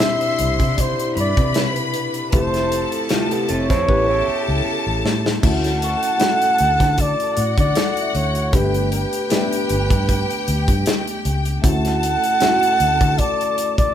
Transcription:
Already playing: B2 D3 D4 E4 G4 C5 E5 C6
0.00 C4 D4 E4 G4, snare
0.21 closed hi-hat
0.39 C2, closed hi-hat
0.60 C3, kick, closed hi-hat
0.77 D5, kick, closed hi-hat
0.81 C5
0.99 closed hi-hat
1.16 G2 B4 B5, closed hi-hat
1.20 D5
1.37 C3, kick, closed hi-hat
1.54 snare, closed hi-hat
1.76 closed hi-hat
1.94 closed hi-hat
2.14 closed hi-hat
2.32 F1 F3 A3 C4 E4 G4 A4 C5 A5, kick, closed hi-hat
2.54 snare, closed hi-hat
2.72 closed hi-hat
2.92 closed hi-hat
3.09 C3 A3 E4 F4 G4, snare, closed hi-hat
3.31 B3 G4, closed hi-hat
3.49 F1 C4 A4 C#5, closed hi-hat
3.70 F2 E4 C5, kick, snare, closed hi-hat
3.86 A1 C#3 B3 C#4 E4 G4 A4 B4 A5, kick
4.09 E4 C#5
4.28 muted fingered electric bass stroke
4.48 C#2
4.66 muted fingered electric bass stroke
4.87 A1
5.05 A2, snare
5.26 snare
5.41 D2 A3 C#4 E4 F#4 A4 F#5 A5, kick, crash
5.64 snare, closed hi-hat
5.82 C#6, closed hi-hat
6.03 closed hi-hat
6.18 A3 C#4 E4 F#4, snare, closed hi-hat
6.42 closed hi-hat
6.58 D2, closed hi-hat
6.80 D3, kick, snare, closed hi-hat
6.98 D5, kick, closed hi-hat
7.20 closed hi-hat
7.37 A2 F#4 F#5, closed hi-hat
7.58 D3 D5, kick, closed hi-hat
7.75 A4, snare, closed hi-hat
7.97 closed hi-hat
8.02 E5
8.15 D2 C#5, closed hi-hat
8.24 F#6
8.35 closed hi-hat
8.52 G1 A3 B3 D4 G4 B4 G5, kick, closed hi-hat
8.74 closed hi-hat
8.92 B4, closed hi-hat
9.13 closed hi-hat
9.30 A3 B3 D4 G4, snare, closed hi-hat
9.53 closed hi-hat
9.69 G1 D4, closed hi-hat
9.90 G2, kick, closed hi-hat
10.09 kick, closed hi-hat
10.30 closed hi-hat
10.48 D2, closed hi-hat
10.68 G2, kick, closed hi-hat
10.86 snare, closed hi-hat
11.07 closed hi-hat
11.25 C#2, closed hi-hat
11.45 closed hi-hat
11.62 D2 A3 C#4 E4 F#4 A4 F#5 A5, kick, closed hi-hat
11.85 snare, closed hi-hat
12.03 closed hi-hat
12.24 closed hi-hat
12.40 A3 C#4 E4 F#4, snare, closed hi-hat
12.63 closed hi-hat
12.80 D2, closed hi-hat
13.01 D3, kick, closed hi-hat
13.18 D5, kick, closed hi-hat
13.41 closed hi-hat
13.58 closed hi-hat
13.78 D5, kick, closed hi-hat

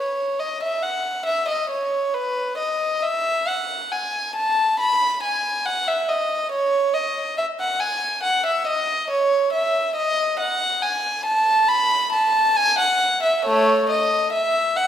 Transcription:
Already playing: C#5
0.39 D#5
0.63 E5
0.83 F#5
1.26 E5
1.48 D#5
1.70 C#5
2.14 B4
2.58 D#5
3.02 E5
3.47 F#5
3.92 G#5
4.36 A5
4.80 B5
5.23 G#5
5.66 F#5
5.87 E5
6.08 D#5
6.51 C#5
6.94 D#5
7.38 E5
7.60 F#5
7.81 G#5
8.23 F#5
8.46 E5
8.67 D#5
9.10 C#5
9.53 E5
9.96 D#5
10.39 F#5
10.82 G#5
11.25 A5
11.69 B5
12.12 A5
12.56 G#5
12.78 F#5
13.23 E5
13.45 A3 C#5
13.89 D#5
14.33 E5
14.76 F#5

